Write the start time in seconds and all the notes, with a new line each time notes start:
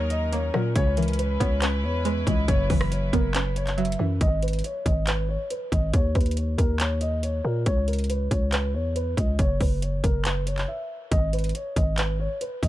Already playing: D#2 D#3 F#3 C#4 D#4 A#4
0.10 D#5, closed hi-hat
0.32 A#3 C#5, closed hi-hat
0.54 A#2 F#3 A#4, cross-stick
0.76 C#2 C#3 G#3 E4 B4 C#5, kick, closed hi-hat
0.97 E3 A#4, closed hi-hat, open hi-hat
1.03 closed hi-hat
1.08 closed hi-hat
1.13 closed hi-hat
1.19 B4, closed hi-hat
1.40 C#2 B3 C#5, kick, closed hi-hat
1.62 C#4 B4, clap, closed hi-hat
1.84 E2 C#5
2.05 G#3 B4, closed hi-hat
2.27 C#2 E3 D#5, kick, closed hi-hat
2.48 F#1 F#2 F#3 C#5, kick, closed hi-hat
2.70 F#1 E3 B4, kick, open hi-hat
2.81 cross-stick
2.92 C#5, closed hi-hat
3.13 F#1 B3 A#4, kick, closed hi-hat
3.35 C#4 B4, clap, closed hi-hat
3.56 C#5, closed hi-hat
3.67 clap, closed hi-hat
3.78 F#3 E5, closed hi-hat
3.85 closed hi-hat
3.92 closed hi-hat
3.99 F#2 E3
4.21 G#1 D#5, kick, closed hi-hat
4.42 B4, closed hi-hat, open hi-hat
4.48 closed hi-hat
4.53 closed hi-hat
4.59 closed hi-hat
4.64 C#5, closed hi-hat
4.85 G#1 D#5, kick, closed hi-hat
5.07 B4, clap, closed hi-hat
5.29 C#5
5.50 B4, closed hi-hat
5.72 G#1 D#5, kick, closed hi-hat
5.93 D#2 C#5, kick, closed hi-hat
6.15 D#2 B4, kick, closed hi-hat, open hi-hat
6.21 closed hi-hat
6.26 closed hi-hat
6.31 closed hi-hat
6.37 C#5, closed hi-hat
6.58 D#2 A#4, kick, closed hi-hat
6.80 C#5, clap, closed hi-hat
7.01 D#5, closed hi-hat
7.23 C#5, closed hi-hat
7.44 A#2 A#4
7.66 C#2 C#5, kick, closed hi-hat
7.88 A#4, closed hi-hat, open hi-hat
7.93 closed hi-hat
7.99 closed hi-hat
8.04 closed hi-hat
8.09 B4, closed hi-hat
8.31 C#2 C#5, kick, closed hi-hat
8.52 B4, clap, closed hi-hat
8.74 E2 C#5
8.96 B4, closed hi-hat
9.17 C#2 D#5, kick, closed hi-hat
9.39 F#1 C#5, kick, closed hi-hat
9.60 F#1 B4, kick, open hi-hat
9.82 C#5, closed hi-hat
10.04 F#1 A#4, kick, closed hi-hat
10.25 B4, clap, closed hi-hat
10.47 C#5, closed hi-hat
10.58 clap, closed hi-hat
10.68 E5
11.11 G#1 D#5, kick, closed hi-hat
11.33 B4, closed hi-hat, open hi-hat
11.39 closed hi-hat
11.44 closed hi-hat
11.49 closed hi-hat
11.55 C#5, closed hi-hat
11.76 G#1 D#5, kick, closed hi-hat
11.98 B4, clap, closed hi-hat
12.20 C#5
12.41 B4, closed hi-hat
12.63 G#1 D#5, kick, closed hi-hat